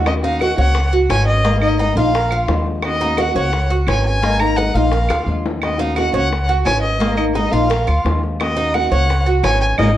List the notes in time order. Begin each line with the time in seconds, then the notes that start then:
Already playing: D#2
0.06 D#3 A#3 C#4 F#4 D#5, high bongo, claves
0.23 A#3 C#4 D#4 F#4 F5, high bongo
0.40 D#3 A#3 C#4 F#4 F#5, high bongo, claves
0.57 C#2 A#3 C#4 F#4 C#5 F#5
0.75 muted nylon-string guitar stroke, high bongo
0.93 F#4, high bongo
1.10 G#1 F#3 B3 C#4 F#4 G#5, high bongo, low bongo, claves
1.28 D#5, high bongo
1.44 G#3 A#3 D#4 A#4, high bongo
1.61 A#3 D#4 A#4 D#5, high bongo, claves
1.79 G#3 A#3 D#4 A#4 D#5, high bongo
1.96 A#1 A#3 D#4 F4 A#4 F5
2.15 A#4, high bongo
2.31 F4, claves
2.48 D#2 F3 G#3 D4 F4, high bongo, low bongo
2.66 high bongo
2.82 D#3 A#3 C#4 F#4 D#5, high bongo, claves
3.00 A#3 C#4 D#4 F#4, high bongo
3.17 D#3 A#3 C#4 F#4 F#5, high bongo, claves
3.35 C#2 A#3 C#4 F#4 C#5 F#5
3.53 muted nylon-string guitar stroke, high bongo
3.70 F#4, high bongo
3.87 G#1 F#3 B3 C#4 F#4 G#5, high bongo, low bongo, claves
4.06 G#5, high bongo
4.22 G#3 A#3 D#4 A#4, high bongo
4.39 A#3 D#4 A#4 A#5, high bongo, claves
4.56 G#3 A#3 D#4 A#4 F#5, high bongo
4.74 A#1 A#3 D#4 F4 A#4 F5
4.91 A#4, muted nylon-string guitar stroke, high bongo
5.09 D2 F4, high bongo, claves
5.26 D#2 F3 G#3 D4 F4
5.46 low bongo
5.62 D#3 A#3 C#4 F#4 D#5, high bongo, claves
5.78 A#3 C#4 D#4 F#4 F5, high bongo
5.96 D#3 A#3 C#4 F#4 F#5, high bongo, claves
6.13 C#2 A#3 C#4 F#4 C#5 F#5
6.31 muted nylon-string guitar stroke, high bongo
6.49 F#4, high bongo
6.65 G#1 F#3 B3 C#4 F#4 G#5, high bongo, low bongo, claves
6.82 D#5, high bongo
7.00 G#3 A#3 D#4 A#4, high bongo
7.17 A#3 D#4 A#4 D#5, high bongo, claves
7.35 G#3 A#3 D#4 A#4 D#5, high bongo
7.51 A#1 A#3 D#4 F4 A#4 F5
7.69 A#4, muted nylon-string guitar stroke, high bongo
7.87 D2 F4, claves
8.05 D#2 F3 G#3 D4 F4, high bongo, low bongo
8.23 high bongo
8.40 D#3 A#3 C#4 F#4 D#5, high bongo, claves
8.57 A#3 C#4 D#4 F#4, high bongo
8.74 D#3 A#3 C#4 F#4 F#5, high bongo, claves
8.92 C#2 A#3 C#4 F#4 C#5 F#5
9.09 muted nylon-string guitar stroke, high bongo
9.26 F#4, high bongo
9.43 G#1 F#3 B3 C#4 F#4 G#5, high bongo, low bongo, claves
9.61 G#5, high bongo
9.78 G#1 G#3 A#3 D#4 G#4 D#5, low bongo, claves